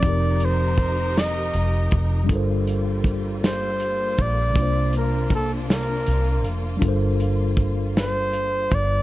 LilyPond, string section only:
\new Staff \with { instrumentName = "String section" } { \time 6/8 \key g \minor \tempo 4. = 53 << { bes'2. | f'2.~ | f'2.~ | f'2. | } \\ { <f ees' g'>2. | <g bes>2. | <c d'>2. | g2. | } >> }